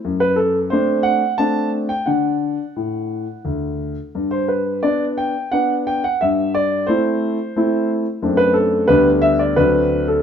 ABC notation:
X:1
M:3/4
L:1/16
Q:1/4=88
K:Dmix
V:1 name="Grand piano"
z B A2 c2 f2 a3 g | f8 z4 | z c B2 d2 g2 f2 g f | e2 d2 c6 z2 |
z B A2 B2 e d B3 A |]
V:2 name="Grand piano"
F,,4 [A,CD]4 [A,CD]4 | [D,D]4 A,,4 D,,4 | G,,4 [B,D]4 [B,D]4 | G,,4 [A,CE]4 [A,CE]4 |
[F,,A,CD]4 [D,,G,B,D]4 [D,,F,CD]4 |]